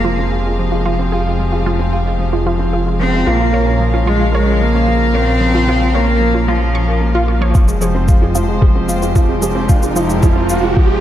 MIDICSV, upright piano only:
0, 0, Header, 1, 2, 480
1, 0, Start_track
1, 0, Key_signature, -4, "minor"
1, 0, Tempo, 535714
1, 1006, Time_signature, 4, 2, 24, 8
1, 9860, End_track
2, 0, Start_track
2, 0, Title_t, "Upright piano"
2, 0, Program_c, 0, 0
2, 0, Control_c, 0, 64, 127
2, 0, Note_on_c, 0, 53, 58
2, 0, Note_on_c, 0, 56, 65
2, 0, Note_on_c, 0, 60, 57
2, 0, Note_on_c, 0, 65, 76
2, 45, Note_off_c, 0, 53, 0
2, 45, Note_on_c, 0, 53, 65
2, 160, Note_off_c, 0, 53, 0
2, 169, Note_off_c, 0, 60, 0
2, 169, Note_on_c, 0, 60, 61
2, 282, Note_off_c, 0, 60, 0
2, 289, Note_off_c, 0, 65, 0
2, 289, Note_on_c, 0, 65, 77
2, 356, Note_off_c, 0, 65, 0
2, 411, Note_off_c, 0, 56, 0
2, 411, Note_on_c, 0, 56, 62
2, 523, Note_off_c, 0, 56, 0
2, 529, Note_on_c, 0, 53, 60
2, 642, Note_off_c, 0, 53, 0
2, 647, Note_on_c, 0, 56, 60
2, 761, Note_off_c, 0, 56, 0
2, 769, Note_on_c, 0, 53, 61
2, 882, Note_off_c, 0, 53, 0
2, 888, Note_on_c, 0, 60, 58
2, 1001, Note_off_c, 0, 60, 0
2, 1012, Note_on_c, 0, 65, 78
2, 1078, Note_off_c, 0, 65, 0
2, 1132, Note_on_c, 0, 56, 64
2, 1243, Note_off_c, 0, 56, 0
2, 1251, Note_on_c, 0, 53, 59
2, 1363, Note_off_c, 0, 53, 0
2, 1367, Note_on_c, 0, 56, 58
2, 1481, Note_off_c, 0, 56, 0
2, 1486, Note_on_c, 0, 53, 68
2, 1600, Note_off_c, 0, 53, 0
2, 1606, Note_on_c, 0, 60, 61
2, 1720, Note_off_c, 0, 60, 0
2, 1720, Note_on_c, 0, 65, 83
2, 1792, Note_off_c, 0, 65, 0
2, 1844, Note_on_c, 0, 56, 65
2, 1959, Note_off_c, 0, 56, 0
2, 1961, Note_on_c, 0, 53, 68
2, 2078, Note_off_c, 0, 53, 0
2, 2084, Note_on_c, 0, 56, 57
2, 2199, Note_off_c, 0, 56, 0
2, 2202, Note_on_c, 0, 53, 63
2, 2318, Note_off_c, 0, 53, 0
2, 2322, Note_on_c, 0, 60, 65
2, 2438, Note_off_c, 0, 60, 0
2, 2440, Note_on_c, 0, 65, 78
2, 2512, Note_off_c, 0, 65, 0
2, 2560, Note_on_c, 0, 56, 63
2, 2677, Note_off_c, 0, 56, 0
2, 2685, Note_on_c, 0, 53, 66
2, 2800, Note_off_c, 0, 53, 0
2, 2802, Note_on_c, 0, 56, 63
2, 2918, Note_off_c, 0, 56, 0
2, 2920, Note_on_c, 0, 53, 63
2, 2940, Control_c, 0, 64, 0
2, 3037, Note_off_c, 0, 53, 0
2, 3041, Note_on_c, 0, 65, 67
2, 3073, Control_c, 0, 64, 127
2, 3158, Note_off_c, 0, 65, 0
2, 3161, Note_on_c, 0, 70, 81
2, 3232, Note_off_c, 0, 70, 0
2, 3279, Note_on_c, 0, 61, 60
2, 3397, Note_off_c, 0, 61, 0
2, 3401, Note_on_c, 0, 53, 62
2, 3516, Note_on_c, 0, 61, 62
2, 3518, Note_off_c, 0, 53, 0
2, 3635, Note_off_c, 0, 61, 0
2, 3635, Note_on_c, 0, 53, 62
2, 3755, Note_off_c, 0, 53, 0
2, 3758, Note_on_c, 0, 65, 67
2, 3874, Note_on_c, 0, 70, 79
2, 3876, Note_off_c, 0, 65, 0
2, 3948, Note_off_c, 0, 70, 0
2, 3998, Note_on_c, 0, 61, 63
2, 4116, Note_off_c, 0, 61, 0
2, 4117, Note_on_c, 0, 53, 63
2, 4236, Note_off_c, 0, 53, 0
2, 4239, Note_on_c, 0, 61, 67
2, 4357, Note_off_c, 0, 61, 0
2, 4362, Note_on_c, 0, 53, 67
2, 4478, Note_off_c, 0, 53, 0
2, 4484, Note_on_c, 0, 65, 64
2, 4599, Note_off_c, 0, 65, 0
2, 4603, Note_on_c, 0, 70, 93
2, 4673, Note_off_c, 0, 70, 0
2, 4722, Note_on_c, 0, 61, 64
2, 4838, Note_off_c, 0, 61, 0
2, 4841, Note_on_c, 0, 53, 71
2, 4958, Note_off_c, 0, 53, 0
2, 4963, Note_on_c, 0, 61, 65
2, 5079, Note_off_c, 0, 61, 0
2, 5080, Note_on_c, 0, 53, 63
2, 5197, Note_off_c, 0, 53, 0
2, 5202, Note_on_c, 0, 65, 61
2, 5318, Note_off_c, 0, 65, 0
2, 5318, Note_on_c, 0, 70, 86
2, 5391, Note_off_c, 0, 70, 0
2, 5441, Note_on_c, 0, 61, 67
2, 5558, Note_off_c, 0, 61, 0
2, 5558, Note_on_c, 0, 53, 64
2, 5676, Note_off_c, 0, 53, 0
2, 5678, Note_on_c, 0, 61, 64
2, 5796, Note_off_c, 0, 61, 0
2, 5796, Note_on_c, 0, 53, 68
2, 5914, Note_on_c, 0, 65, 64
2, 5915, Note_off_c, 0, 53, 0
2, 6032, Note_on_c, 0, 61, 60
2, 6034, Note_off_c, 0, 65, 0
2, 6153, Note_off_c, 0, 61, 0
2, 6160, Note_on_c, 0, 70, 63
2, 6277, Note_off_c, 0, 70, 0
2, 6281, Note_on_c, 0, 58, 66
2, 6398, Note_off_c, 0, 58, 0
2, 6401, Note_on_c, 0, 65, 83
2, 6518, Note_off_c, 0, 65, 0
2, 6521, Note_on_c, 0, 58, 67
2, 6638, Note_off_c, 0, 58, 0
2, 6638, Note_on_c, 0, 53, 79
2, 6711, Note_off_c, 0, 53, 0
2, 6761, Note_on_c, 0, 53, 66
2, 6777, Control_c, 0, 64, 0
2, 6878, Note_off_c, 0, 53, 0
2, 6879, Note_on_c, 0, 56, 67
2, 6957, Control_c, 0, 64, 127
2, 6997, Note_off_c, 0, 56, 0
2, 6997, Note_on_c, 0, 53, 67
2, 7116, Note_off_c, 0, 53, 0
2, 7122, Note_on_c, 0, 60, 60
2, 7238, Note_off_c, 0, 60, 0
2, 7241, Note_on_c, 0, 65, 84
2, 7312, Note_off_c, 0, 65, 0
2, 7362, Note_on_c, 0, 56, 64
2, 7478, Note_off_c, 0, 56, 0
2, 7483, Note_on_c, 0, 53, 65
2, 7599, Note_off_c, 0, 53, 0
2, 7602, Note_on_c, 0, 56, 69
2, 7718, Note_off_c, 0, 56, 0
2, 7720, Note_on_c, 0, 53, 70
2, 7837, Note_off_c, 0, 53, 0
2, 7844, Note_on_c, 0, 60, 63
2, 7959, Note_off_c, 0, 60, 0
2, 7960, Note_on_c, 0, 65, 86
2, 8032, Note_off_c, 0, 65, 0
2, 8082, Note_on_c, 0, 56, 70
2, 8198, Note_off_c, 0, 56, 0
2, 8200, Note_on_c, 0, 53, 69
2, 8317, Note_off_c, 0, 53, 0
2, 8318, Note_on_c, 0, 56, 68
2, 8436, Note_off_c, 0, 56, 0
2, 8439, Note_on_c, 0, 53, 66
2, 8557, Note_off_c, 0, 53, 0
2, 8558, Note_on_c, 0, 60, 67
2, 8676, Note_off_c, 0, 60, 0
2, 8679, Note_on_c, 0, 65, 83
2, 8751, Note_off_c, 0, 65, 0
2, 8802, Note_on_c, 0, 56, 66
2, 8918, Note_off_c, 0, 56, 0
2, 8920, Note_on_c, 0, 53, 68
2, 9037, Note_off_c, 0, 53, 0
2, 9038, Note_on_c, 0, 56, 62
2, 9156, Note_off_c, 0, 56, 0
2, 9159, Note_on_c, 0, 53, 73
2, 9277, Note_off_c, 0, 53, 0
2, 9281, Note_on_c, 0, 60, 67
2, 9398, Note_off_c, 0, 60, 0
2, 9403, Note_on_c, 0, 65, 89
2, 9473, Note_off_c, 0, 65, 0
2, 9519, Note_on_c, 0, 56, 69
2, 9637, Note_off_c, 0, 56, 0
2, 9640, Note_on_c, 0, 53, 70
2, 9757, Note_off_c, 0, 53, 0
2, 9759, Note_on_c, 0, 56, 64
2, 9860, Note_off_c, 0, 56, 0
2, 9860, End_track
0, 0, End_of_file